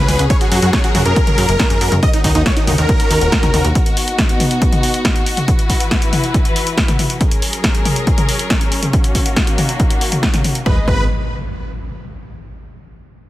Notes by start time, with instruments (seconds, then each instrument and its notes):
Already playing: string section C#3 C#4 F#4 G#4, supersaw synth B4, downlifter
0.08 analog synth bass C#2, open hi-hat, mid tom
0.19 analog synth bass C#2, closed hi-hat
0.30 string section F#3 A#4, supersaw synth C#5, kick, closed hi-hat
0.41 supersaw synth F#4, closed hi-hat
0.52 analog synth bass F#2, supersaw synth F#4, open hi-hat
0.62 analog synth bass F#2, supersaw synth F#4, closed hi-hat
0.73 supersaw synth C#5, kick, snare, closed hi-hat
0.84 supersaw synth F#4, closed hi-hat
0.95 analog synth bass F#2, supersaw synth F#4, open hi-hat, mid tom
1.06 analog synth bass F#2, supersaw synth A#4, closed hi-hat
1.16 kick, closed hi-hat
1.27 closed hi-hat, mid tom
1.38 analog synth bass F#2, open hi-hat
1.49 analog synth bass F#1, closed hi-hat
1.59 kick, snare, closed hi-hat
1.70 analog synth bass F#2, closed hi-hat
1.81 analog synth bass F#2, open hi-hat
1.92 analog synth bass F#2, closed hi-hat, mid tom
2.03 string section D#3 A#3 C#4 F#4, supersaw synth D#5, kick, closed hi-hat
2.13 supersaw synth D#4, closed hi-hat
2.24 analog synth bass D#2, supersaw synth D#4, kick, open hi-hat
2.35 analog synth bass D#2, supersaw synth D#4, closed hi-hat
2.46 supersaw synth C#5, kick, snare, closed hi-hat
2.57 supersaw synth D#4, closed hi-hat
2.67 analog synth bass D#2, supersaw synth D#4, open hi-hat, mid tom
2.78 analog synth bass D#2, supersaw synth A#4, closed hi-hat
2.89 kick, closed hi-hat
3.00 closed hi-hat
3.11 analog synth bass D#2, open hi-hat
3.21 analog synth bass D#1, closed hi-hat
3.32 kick, snare, closed hi-hat
3.43 analog synth bass D#2, snare, closed hi-hat, mid tom
3.54 analog synth bass D#2, open hi-hat, mid tom
3.65 analog synth bass D#2, closed hi-hat
3.75 string section B3 D#4, kick, closed hi-hat
3.86 closed hi-hat
3.97 open hi-hat
4.08 closed hi-hat
4.19 kick, snare, closed hi-hat
4.29 closed hi-hat
4.40 open hi-hat, mid tom
4.51 closed hi-hat
4.62 kick, closed hi-hat
4.73 closed hi-hat, mid tom
4.83 open hi-hat
4.94 closed hi-hat
5.05 kick, snare, closed hi-hat
5.16 closed hi-hat
5.26 open hi-hat
5.37 closed hi-hat, mid tom
5.48 string section E3 E4 B4, kick, closed hi-hat
5.59 closed hi-hat
5.70 kick, open hi-hat
5.80 closed hi-hat
5.91 kick, snare, closed hi-hat
6.02 closed hi-hat
6.13 open hi-hat, mid tom
6.24 closed hi-hat
6.34 kick, closed hi-hat
6.45 closed hi-hat
6.56 open hi-hat
6.67 closed hi-hat
6.78 kick, snare, closed hi-hat
6.88 snare, closed hi-hat, mid tom
6.99 open hi-hat, mid tom
7.10 closed hi-hat
7.21 string section F#3 C#4 G#4 A#4, kick, closed hi-hat
7.31 closed hi-hat
7.42 open hi-hat
7.53 closed hi-hat
7.64 kick, snare, closed hi-hat
7.75 closed hi-hat
7.85 open hi-hat, mid tom
7.96 closed hi-hat
8.07 kick, closed hi-hat
8.18 closed hi-hat, mid tom
8.29 open hi-hat
8.39 closed hi-hat
8.50 kick, snare, closed hi-hat
8.61 closed hi-hat
8.72 open hi-hat
8.83 closed hi-hat, mid tom
8.93 string section D#3 A#3 F#4, kick, closed hi-hat
9.04 closed hi-hat
9.15 kick, open hi-hat
9.26 closed hi-hat
9.36 kick, snare, closed hi-hat
9.47 closed hi-hat
9.58 open hi-hat, mid tom
9.69 closed hi-hat
9.80 kick, closed hi-hat
9.90 closed hi-hat
10.01 open hi-hat
10.12 closed hi-hat, mid tom
10.23 kick, snare, closed hi-hat
10.34 snare, closed hi-hat, mid tom
10.44 open hi-hat, mid tom
10.55 closed hi-hat
10.66 analog synth bass G#1, string section G#3 G#4 B4 D#5, supersaw synth B4, kick, impact
10.88 analog synth bass G#1, supersaw synth B4, kick